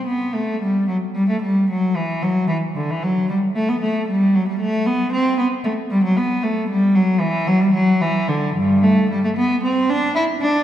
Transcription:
0.07 B3
0.34 A3
0.62 G3
0.88 F#3
1.15 G3
1.29 A3
1.42 G3
1.70 F#3
1.97 E3
2.23 F#3
2.49 E3
2.76 D3
2.91 E3
3.03 F#3
3.30 G3
3.55 A3
3.69 B3
3.81 A3
4.08 G3
4.35 F#3
4.48 G3
4.61 A3
4.86 B3
5.12 C4
5.38 B3
5.64 A3
5.90 G3
6.04 F#3
6.17 B3
6.43 A3
6.69 G3
6.95 F#3
7.20 E3
7.47 F#3
7.60 G3
7.73 F#3
8.01 E3
8.28 D3
8.57 G2
8.83 A3
9.10 G3
9.24 A3
9.37 B3
9.64 C4
9.90 D4
10.15 E4
10.41 D4

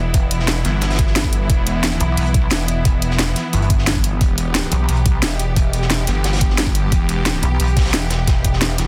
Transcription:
Already playing: E1 E3 B3 E4
0.14 kick, closed hi-hat
0.31 closed hi-hat
0.40 snare
0.48 snare, closed hi-hat
0.64 G1, snare, closed hi-hat
0.81 snare, closed hi-hat
0.90 snare, closed hi-hat
0.95 snare, closed hi-hat
0.99 kick, closed hi-hat
1.07 snare
1.15 snare, closed hi-hat
1.24 kick
1.32 closed hi-hat
1.50 E1, kick, closed hi-hat
1.67 E1, closed hi-hat
1.84 snare, closed hi-hat
2.00 B1, closed hi-hat
2.17 B1, closed hi-hat, open hi-hat
2.26 closed hi-hat
2.34 kick, closed hi-hat
2.50 E1, snare, closed hi-hat
2.68 closed hi-hat
2.85 kick, closed hi-hat
3.02 closed hi-hat
3.11 snare
3.19 snare, closed hi-hat
3.36 snare, closed hi-hat
3.53 G1, closed hi-hat
3.62 closed hi-hat
3.70 kick, closed hi-hat
3.78 snare
3.86 snare, closed hi-hat
3.96 kick
4.04 closed hi-hat
4.21 E1 G4, kick, closed hi-hat
4.38 E1, closed hi-hat
4.55 snare, closed hi-hat
4.72 B1, closed hi-hat
4.88 B1, closed hi-hat, open hi-hat
4.97 closed hi-hat
5.06 kick, closed hi-hat
5.22 E1, snare, closed hi-hat
5.39 closed hi-hat
5.56 kick, closed hi-hat
5.73 closed hi-hat
5.82 snare
5.90 snare, closed hi-hat
6.07 G1, snare, closed hi-hat
6.24 snare, closed hi-hat
6.33 snare, closed hi-hat
6.36 snare, closed hi-hat
6.40 kick, closed hi-hat
6.50 snare
6.58 snare, closed hi-hat
6.67 kick
6.75 closed hi-hat
6.92 E1, kick, closed hi-hat
7.09 E1, closed hi-hat
7.25 snare, closed hi-hat
7.43 B1, closed hi-hat
7.60 B1, closed hi-hat, open hi-hat
7.68 closed hi-hat
7.76 kick, snare, closed hi-hat
7.81 snare, closed hi-hat
7.85 snare, closed hi-hat
7.89 snare, closed hi-hat
7.93 E1, snare, closed hi-hat
8.10 snare, closed hi-hat
8.28 kick, snare, closed hi-hat
8.44 kick, closed hi-hat
8.53 snare
8.61 snare, closed hi-hat
8.78 E1, snare, closed hi-hat

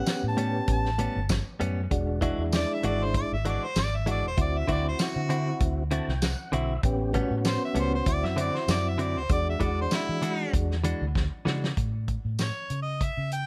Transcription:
Already playing: B3 C#4 G4 F#5
0.06 snare, closed hi-hat, tambourine
0.23 A2
0.28 A5
0.37 A2 G3 B3 C#4, closed hi-hat
0.68 A1, kick, closed hi-hat
0.72 A5
0.85 snare
0.98 A2 G3 B3 C#4, closed hi-hat
1.16 G1
1.29 kick, snare, closed hi-hat, tambourine
1.60 F#2 A2 G3 B3 C#4, closed hi-hat
1.91 E1 G#3 D4 F#4, kick, closed hi-hat
2.21 E3 G#3 D4 E4 F#4, kick, closed hi-hat
2.38 E2
2.53 D5, snare, closed hi-hat, tambourine
2.73 E5
2.83 G#1 E3 G#3 D4 F#4 D5, closed hi-hat
3.04 C5
3.14 D5, kick, closed hi-hat
3.32 G#1 E5
3.45 E3 G#3 D4 F#4 D5, closed hi-hat
3.64 C5
3.76 G#1 D5, snare, closed hi-hat, tambourine
3.96 E5
4.06 E3 G#3 D4 F#4, closed hi-hat
4.11 D5
4.23 E1
4.27 C5
4.37 D2 C4 E4 F#4, kick, closed hi-hat
4.42 D5
4.58 E5
4.68 D2 D3 C4 E4 F#4, kick, closed hi-hat
4.72 D5
4.89 C5
4.99 F#4, snare, closed hi-hat, tambourine
5.16 D3
5.29 D3 C4 E4 F#4, closed hi-hat
5.60 D2, kick, closed hi-hat
5.91 D3 C4 E4 F#4 A5, closed hi-hat
6.08 C2 G5, snare
6.22 F#5, snare, closed hi-hat, tambourine
6.52 B1 D3 C4 E4 F#4 E5, closed hi-hat
6.83 A1 B3 C#4 G4, kick, closed hi-hat
7.13 A2 G3 B3 C#4 F#4, kick, closed hi-hat
7.31 A2
7.45 C5, snare, closed hi-hat, tambourine
7.65 E5
7.75 C#2 A2 G3 B3 C#4, closed hi-hat
7.79 C5
7.95 C5
8.06 D2 C4 E4 F#4 D5, kick, closed hi-hat
8.24 F#2 E5, snare
8.36 D3 F#3 C4 E4, closed hi-hat
8.41 D5
8.55 C5, snare
8.68 F#2 D5, snare, closed hi-hat, tambourine
8.88 E5
8.98 D3 F#3 C4 E4, closed hi-hat
9.02 D5
9.17 D2 C5
9.29 E2 G#3 D4 F#4 D5, kick, closed hi-hat
9.50 E5
9.60 E2 E3 G#3 D4 F#4, kick, closed hi-hat
9.64 D5
9.81 C5
9.91 E4, snare, closed hi-hat, tambourine
10.09 E3
10.22 E3 G#3 D4 F#4, closed hi-hat
10.53 E2, kick, closed hi-hat
10.71 snare
10.84 E3 G#3 D4 F#4, closed hi-hat
11.01 D2
11.15 kick, snare
11.45 C#3 E3 G#3 D4 F#4, snare
11.64 snare
11.77 A2, kick, closed hi-hat
12.08 kick, closed hi-hat
12.25 A2
12.39 C#5, snare, closed hi-hat, tambourine
12.70 C#3, closed hi-hat
12.82 D#5
13.01 E5, kick, closed hi-hat
13.17 C#3
13.32 G5, closed hi-hat

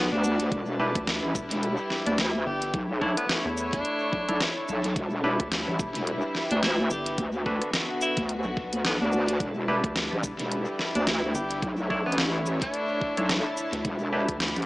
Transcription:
Already playing: D3 B3 D4 F#4 B4 F#5 A5
0.12 D2 D4
0.24 shaker
0.40 closed hi-hat
0.52 E1 G3 E4, kick, closed hi-hat
0.76 D4 E4 G4 B4 E5
0.95 D2, kick, cross-stick, closed hi-hat
1.07 snare, closed hi-hat
1.23 A1, cross-stick
1.35 E1, kick, shaker
1.51 E1 G5, closed hi-hat
1.63 closed hi-hat
1.90 snare
2.06 D2 D4, closed hi-hat
2.18 E4, snare, closed hi-hat
2.46 G1 G4
2.62 closed hi-hat
2.73 B1 D3 A3 E4 C#5, kick, closed hi-hat
3.01 D4 E4 A4 C#5, kick
3.17 B3, cross-stick, closed hi-hat
3.29 snare, closed hi-hat
3.35 C#5
3.45 E2, cross-stick
3.57 shaker
3.73 D4 A5, kick, closed hi-hat
3.85 closed hi-hat
4.13 B1, kick
4.28 B1 D4 E4 A4 C#5, closed hi-hat
4.40 snare, closed hi-hat
4.68 B1, shaker
4.84 closed hi-hat
4.96 E1 G3 E4, kick, closed hi-hat
5.24 D4 E4 G4 B4
5.40 D2, kick, cross-stick, closed hi-hat
5.47 B4
5.52 snare, closed hi-hat
5.67 A1, cross-stick
5.79 E1, kick, shaker
5.95 E1 G5, closed hi-hat
6.07 closed hi-hat
6.35 snare
6.51 D2 D4, closed hi-hat
6.63 E4, snare, closed hi-hat
6.90 G1 G4, shaker
7.06 closed hi-hat
7.18 D2 B3 F#4, kick, closed hi-hat
7.46 D4 F#4 A4 B4, kick
7.62 cross-stick, closed hi-hat
7.73 snare, closed hi-hat
8.01 E4, shaker
8.16 D2 F#5, kick, closed hi-hat
8.20 A5
8.29 closed hi-hat
8.45 B1
8.57 kick
8.73 D2, closed hi-hat
8.85 B1 B3, snare, closed hi-hat
9.01 D2 D4
9.12 shaker
9.28 closed hi-hat
9.40 E1 G3 D4 E4, kick, closed hi-hat
9.68 D4 E4 G4 B4
9.84 D2, kick, cross-stick, closed hi-hat
9.96 snare, closed hi-hat
10.12 A1, cross-stick
10.23 E1, kick, shaker
10.38 E1 E5 G5, closed hi-hat
10.51 closed hi-hat
10.79 snare
10.95 D2 D4, closed hi-hat
11.07 E4, snare, closed hi-hat
11.35 G1 G4, shaker
11.51 closed hi-hat
11.62 B1 A3 C#5, kick, closed hi-hat
11.90 D4 E4 A4 C#5, kick
12.06 A1 B3, cross-stick
12.12 C#5, closed hi-hat
12.18 snare, closed hi-hat
12.46 shaker
12.51 A5
12.62 D4, kick, closed hi-hat
12.74 closed hi-hat
13.01 kick
13.17 B1 D4 E4 A4 C#5, closed hi-hat
13.29 snare, closed hi-hat
13.57 shaker
13.73 D2, closed hi-hat
13.85 E1 G3, kick, closed hi-hat
14.13 D4 E4 G4 B4
14.28 D2, kick, cross-stick, closed hi-hat
14.40 snare, closed hi-hat
14.48 B4, closed hi-hat
14.56 A1, cross-stick, closed hi-hat
14.62 closed hi-hat

